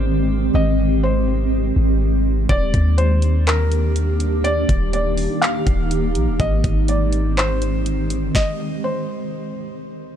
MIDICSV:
0, 0, Header, 1, 5, 480
1, 0, Start_track
1, 0, Tempo, 487805
1, 534, Time_signature, 4, 2, 24, 8
1, 10000, End_track
2, 0, Start_track
2, 0, Title_t, "Felt piano"
2, 0, Program_c, 0, 0
2, 0, Note_on_c, 0, 72, 91
2, 495, Note_off_c, 0, 72, 0
2, 541, Note_on_c, 0, 75, 98
2, 989, Note_off_c, 0, 75, 0
2, 1018, Note_on_c, 0, 72, 81
2, 2417, Note_off_c, 0, 72, 0
2, 2453, Note_on_c, 0, 74, 107
2, 2905, Note_off_c, 0, 74, 0
2, 2930, Note_on_c, 0, 72, 96
2, 3383, Note_off_c, 0, 72, 0
2, 3417, Note_on_c, 0, 70, 82
2, 4336, Note_off_c, 0, 70, 0
2, 4371, Note_on_c, 0, 74, 104
2, 4824, Note_off_c, 0, 74, 0
2, 4855, Note_on_c, 0, 74, 91
2, 5306, Note_off_c, 0, 74, 0
2, 5329, Note_on_c, 0, 77, 91
2, 6252, Note_off_c, 0, 77, 0
2, 6295, Note_on_c, 0, 75, 92
2, 6746, Note_off_c, 0, 75, 0
2, 6778, Note_on_c, 0, 74, 80
2, 7227, Note_off_c, 0, 74, 0
2, 7257, Note_on_c, 0, 72, 93
2, 8176, Note_off_c, 0, 72, 0
2, 8221, Note_on_c, 0, 75, 96
2, 8669, Note_off_c, 0, 75, 0
2, 8699, Note_on_c, 0, 72, 79
2, 10000, Note_off_c, 0, 72, 0
2, 10000, End_track
3, 0, Start_track
3, 0, Title_t, "Ambient pad"
3, 0, Program_c, 1, 92
3, 0, Note_on_c, 1, 51, 80
3, 0, Note_on_c, 1, 56, 70
3, 0, Note_on_c, 1, 60, 72
3, 0, Note_on_c, 1, 67, 90
3, 2415, Note_off_c, 1, 67, 0
3, 2416, Note_off_c, 1, 56, 0
3, 2416, Note_off_c, 1, 60, 0
3, 2455, Note_on_c, 1, 58, 72
3, 2455, Note_on_c, 1, 62, 73
3, 2455, Note_on_c, 1, 67, 85
3, 4355, Note_off_c, 1, 62, 0
3, 4374, Note_on_c, 1, 63, 75
3, 6255, Note_off_c, 1, 51, 0
3, 6256, Note_off_c, 1, 58, 0
3, 6275, Note_off_c, 1, 63, 0
3, 6294, Note_on_c, 1, 51, 75
3, 6294, Note_on_c, 1, 56, 71
3, 6294, Note_on_c, 1, 60, 73
3, 8175, Note_off_c, 1, 67, 0
3, 8195, Note_off_c, 1, 51, 0
3, 8195, Note_off_c, 1, 56, 0
3, 8195, Note_off_c, 1, 60, 0
3, 10000, End_track
4, 0, Start_track
4, 0, Title_t, "808-style bass"
4, 0, Program_c, 2, 38
4, 0, Note_on_c, 2, 32, 105
4, 494, Note_off_c, 2, 32, 0
4, 534, Note_on_c, 2, 32, 107
4, 1695, Note_off_c, 2, 32, 0
4, 1735, Note_on_c, 2, 32, 106
4, 2426, Note_off_c, 2, 32, 0
4, 2454, Note_on_c, 2, 27, 114
4, 2684, Note_off_c, 2, 27, 0
4, 2695, Note_on_c, 2, 39, 106
4, 4575, Note_off_c, 2, 39, 0
4, 4616, Note_on_c, 2, 27, 107
4, 5191, Note_off_c, 2, 27, 0
4, 5576, Note_on_c, 2, 27, 103
4, 6055, Note_on_c, 2, 34, 101
4, 6070, Note_off_c, 2, 27, 0
4, 6175, Note_on_c, 2, 27, 99
4, 6190, Note_off_c, 2, 34, 0
4, 6289, Note_off_c, 2, 27, 0
4, 6294, Note_on_c, 2, 32, 109
4, 6525, Note_off_c, 2, 32, 0
4, 6536, Note_on_c, 2, 32, 103
4, 8175, Note_off_c, 2, 32, 0
4, 10000, End_track
5, 0, Start_track
5, 0, Title_t, "Drums"
5, 2454, Note_on_c, 9, 36, 113
5, 2454, Note_on_c, 9, 42, 66
5, 2552, Note_off_c, 9, 36, 0
5, 2552, Note_off_c, 9, 42, 0
5, 2695, Note_on_c, 9, 36, 90
5, 2695, Note_on_c, 9, 42, 74
5, 2793, Note_off_c, 9, 36, 0
5, 2793, Note_off_c, 9, 42, 0
5, 2933, Note_on_c, 9, 42, 72
5, 3032, Note_off_c, 9, 42, 0
5, 3171, Note_on_c, 9, 42, 69
5, 3269, Note_off_c, 9, 42, 0
5, 3415, Note_on_c, 9, 42, 66
5, 3423, Note_on_c, 9, 39, 117
5, 3514, Note_off_c, 9, 42, 0
5, 3521, Note_off_c, 9, 39, 0
5, 3656, Note_on_c, 9, 42, 59
5, 3754, Note_off_c, 9, 42, 0
5, 3895, Note_on_c, 9, 42, 86
5, 3993, Note_off_c, 9, 42, 0
5, 4134, Note_on_c, 9, 42, 82
5, 4232, Note_off_c, 9, 42, 0
5, 4375, Note_on_c, 9, 42, 68
5, 4473, Note_off_c, 9, 42, 0
5, 4616, Note_on_c, 9, 36, 92
5, 4616, Note_on_c, 9, 42, 77
5, 4714, Note_off_c, 9, 36, 0
5, 4714, Note_off_c, 9, 42, 0
5, 4854, Note_on_c, 9, 42, 69
5, 4953, Note_off_c, 9, 42, 0
5, 5092, Note_on_c, 9, 46, 53
5, 5190, Note_off_c, 9, 46, 0
5, 5336, Note_on_c, 9, 42, 64
5, 5344, Note_on_c, 9, 39, 114
5, 5435, Note_off_c, 9, 42, 0
5, 5442, Note_off_c, 9, 39, 0
5, 5576, Note_on_c, 9, 36, 86
5, 5576, Note_on_c, 9, 42, 60
5, 5674, Note_off_c, 9, 36, 0
5, 5674, Note_off_c, 9, 42, 0
5, 5815, Note_on_c, 9, 42, 81
5, 5914, Note_off_c, 9, 42, 0
5, 6053, Note_on_c, 9, 42, 77
5, 6152, Note_off_c, 9, 42, 0
5, 6294, Note_on_c, 9, 36, 120
5, 6294, Note_on_c, 9, 42, 65
5, 6392, Note_off_c, 9, 36, 0
5, 6392, Note_off_c, 9, 42, 0
5, 6535, Note_on_c, 9, 36, 96
5, 6535, Note_on_c, 9, 42, 76
5, 6633, Note_off_c, 9, 42, 0
5, 6634, Note_off_c, 9, 36, 0
5, 6773, Note_on_c, 9, 42, 73
5, 6871, Note_off_c, 9, 42, 0
5, 7011, Note_on_c, 9, 42, 70
5, 7110, Note_off_c, 9, 42, 0
5, 7256, Note_on_c, 9, 42, 64
5, 7263, Note_on_c, 9, 39, 119
5, 7354, Note_off_c, 9, 42, 0
5, 7362, Note_off_c, 9, 39, 0
5, 7496, Note_on_c, 9, 42, 59
5, 7594, Note_off_c, 9, 42, 0
5, 7735, Note_on_c, 9, 42, 82
5, 7833, Note_off_c, 9, 42, 0
5, 7973, Note_on_c, 9, 42, 82
5, 8072, Note_off_c, 9, 42, 0
5, 8214, Note_on_c, 9, 36, 114
5, 8221, Note_on_c, 9, 38, 90
5, 8313, Note_off_c, 9, 36, 0
5, 8319, Note_off_c, 9, 38, 0
5, 10000, End_track
0, 0, End_of_file